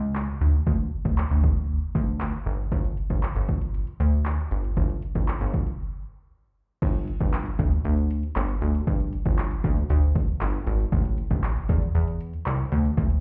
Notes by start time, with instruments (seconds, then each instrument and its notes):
Already playing: analog synth bass C#2
0.15 clap
0.41 analog synth bass D2
0.67 analog synth bass D2, kick
1.05 analog synth bass D2, kick
1.18 clap
1.31 analog synth bass D2
1.44 kick
1.95 analog synth bass D2, kick
2.20 clap
2.46 analog synth bass G1
2.72 analog synth bass G1, kick, closed hi-hat
2.84 closed hi-hat
2.97 closed hi-hat
3.10 analog synth bass G1, kick, closed hi-hat
3.23 clap, closed hi-hat
3.36 analog synth bass G1, closed hi-hat
3.48 kick, closed hi-hat
3.61 closed hi-hat
3.74 closed hi-hat
3.87 closed hi-hat
4.00 analog synth bass D2, closed hi-hat
4.13 closed hi-hat
4.25 clap, closed hi-hat
4.39 closed hi-hat
4.51 analog synth bass G1, closed hi-hat
4.64 closed hi-hat
4.77 analog synth bass G1, kick, closed hi-hat
4.90 closed hi-hat
5.02 closed hi-hat
5.15 analog synth bass G1, kick, closed hi-hat
5.28 clap, closed hi-hat
5.41 analog synth bass G1, closed hi-hat
5.54 kick, closed hi-hat
5.67 closed hi-hat
6.82 analog synth bass G1, kick, closed hi-hat, crash
6.95 closed hi-hat
7.08 closed hi-hat
7.20 analog synth bass G1, kick, closed hi-hat
7.33 clap, closed hi-hat
7.46 closed hi-hat
7.59 analog synth bass D2, kick, closed hi-hat
7.72 closed hi-hat
7.85 analog synth bass D2, closed hi-hat
7.97 closed hi-hat
8.11 closed hi-hat
8.23 closed hi-hat
8.36 analog synth bass G1, clap, closed hi-hat
8.49 closed hi-hat
8.62 analog synth bass D2, closed hi-hat
8.75 closed hi-hat
8.87 analog synth bass G1, kick, closed hi-hat
9.00 closed hi-hat
9.13 closed hi-hat
9.25 analog synth bass G1, kick, closed hi-hat
9.38 clap, closed hi-hat
9.51 closed hi-hat
9.64 analog synth bass D2, kick, closed hi-hat
9.77 closed hi-hat
9.90 analog synth bass D2, closed hi-hat
10.03 closed hi-hat
10.15 kick, closed hi-hat
10.28 closed hi-hat
10.41 analog synth bass G1, clap, closed hi-hat
10.54 closed hi-hat
10.67 analog synth bass G#1, closed hi-hat
10.80 closed hi-hat
10.92 analog synth bass A1, kick, closed hi-hat
11.05 closed hi-hat
11.18 closed hi-hat
11.30 analog synth bass A1, kick, closed hi-hat
11.44 clap, closed hi-hat
11.56 closed hi-hat
11.69 analog synth bass E2, kick, closed hi-hat
11.82 closed hi-hat
11.95 analog synth bass E2, closed hi-hat
12.08 closed hi-hat
12.21 closed hi-hat
12.33 closed hi-hat
12.46 analog synth bass C2, clap, closed hi-hat
12.59 closed hi-hat
12.72 analog synth bass D2, closed hi-hat
12.85 closed hi-hat
12.97 analog synth bass D2, kick, closed hi-hat
13.10 closed hi-hat